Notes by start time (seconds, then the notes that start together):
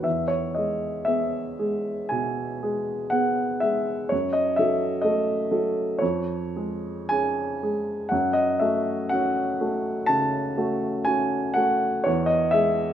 0.03 E2 E5
0.28 C#5
0.55 G#3 G#4 D#5
1.05 B3 G#4 E5
1.59 G#3 G#4
2.09 B2 G#5
2.63 G#3 G#4
3.10 B3 G#4 F#5
3.60 G#3 G#4 E5
4.09 F#2 C#5
4.33 D#5
4.56 F#3 A4 E5
5.02 A3 A4 D#5
5.51 F#3 A4
5.99 F2 C#5
6.56 G#3 G#4
7.09 C#4 G#4 G#5
7.63 G#3 G#4
8.09 F#2 F#5
8.33 D#5
8.60 A3 F#4 E5
9.09 C#4 F#4 F#5
9.61 A3 F#4
10.06 C#3 A5
10.58 A3 F#4
11.05 C#4 F#4 G#5
11.54 A3 F#4 F#5
12.04 E2 C#5
12.26 D#5
12.51 G#3 G#4 E5